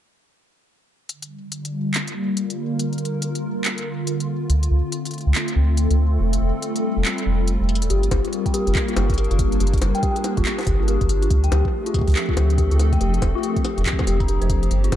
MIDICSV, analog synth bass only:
0, 0, Header, 1, 2, 480
1, 0, Start_track
1, 0, Key_signature, -2, "minor"
1, 0, Tempo, 425532
1, 1233, Time_signature, 4, 2, 24, 8
1, 16876, End_track
2, 0, Start_track
2, 0, Title_t, "Analog synth bass"
2, 0, Program_c, 0, 38
2, 5072, Note_on_c, 0, 38, 96
2, 5283, Note_off_c, 0, 38, 0
2, 5312, Note_on_c, 0, 38, 90
2, 5437, Note_off_c, 0, 38, 0
2, 5942, Note_on_c, 0, 38, 80
2, 6018, Note_off_c, 0, 38, 0
2, 6272, Note_on_c, 0, 38, 91
2, 6622, Note_off_c, 0, 38, 0
2, 6661, Note_on_c, 0, 38, 97
2, 6969, Note_off_c, 0, 38, 0
2, 6992, Note_on_c, 0, 29, 96
2, 7203, Note_off_c, 0, 29, 0
2, 7232, Note_on_c, 0, 29, 91
2, 7357, Note_off_c, 0, 29, 0
2, 7861, Note_on_c, 0, 29, 81
2, 7937, Note_off_c, 0, 29, 0
2, 8192, Note_on_c, 0, 29, 93
2, 8542, Note_off_c, 0, 29, 0
2, 8581, Note_on_c, 0, 29, 89
2, 8821, Note_on_c, 0, 27, 98
2, 8838, Note_off_c, 0, 29, 0
2, 8897, Note_off_c, 0, 27, 0
2, 8913, Note_on_c, 0, 31, 99
2, 9123, Note_off_c, 0, 31, 0
2, 9152, Note_on_c, 0, 31, 90
2, 9277, Note_off_c, 0, 31, 0
2, 9781, Note_on_c, 0, 31, 80
2, 9857, Note_off_c, 0, 31, 0
2, 10112, Note_on_c, 0, 31, 91
2, 10462, Note_off_c, 0, 31, 0
2, 10501, Note_on_c, 0, 31, 99
2, 10808, Note_off_c, 0, 31, 0
2, 10832, Note_on_c, 0, 31, 96
2, 11042, Note_off_c, 0, 31, 0
2, 11072, Note_on_c, 0, 31, 90
2, 11197, Note_off_c, 0, 31, 0
2, 11701, Note_on_c, 0, 31, 81
2, 11777, Note_off_c, 0, 31, 0
2, 12032, Note_on_c, 0, 31, 93
2, 12383, Note_off_c, 0, 31, 0
2, 12421, Note_on_c, 0, 31, 98
2, 12729, Note_off_c, 0, 31, 0
2, 12752, Note_on_c, 0, 38, 99
2, 12963, Note_off_c, 0, 38, 0
2, 12992, Note_on_c, 0, 38, 90
2, 13117, Note_off_c, 0, 38, 0
2, 13621, Note_on_c, 0, 38, 78
2, 13698, Note_off_c, 0, 38, 0
2, 13952, Note_on_c, 0, 38, 95
2, 14302, Note_off_c, 0, 38, 0
2, 14341, Note_on_c, 0, 38, 96
2, 14649, Note_off_c, 0, 38, 0
2, 14672, Note_on_c, 0, 29, 98
2, 14883, Note_off_c, 0, 29, 0
2, 14912, Note_on_c, 0, 29, 91
2, 15037, Note_off_c, 0, 29, 0
2, 15541, Note_on_c, 0, 29, 79
2, 15617, Note_off_c, 0, 29, 0
2, 15872, Note_on_c, 0, 29, 93
2, 16222, Note_off_c, 0, 29, 0
2, 16261, Note_on_c, 0, 29, 94
2, 16568, Note_off_c, 0, 29, 0
2, 16591, Note_on_c, 0, 31, 96
2, 16802, Note_off_c, 0, 31, 0
2, 16832, Note_on_c, 0, 31, 90
2, 16876, Note_off_c, 0, 31, 0
2, 16876, End_track
0, 0, End_of_file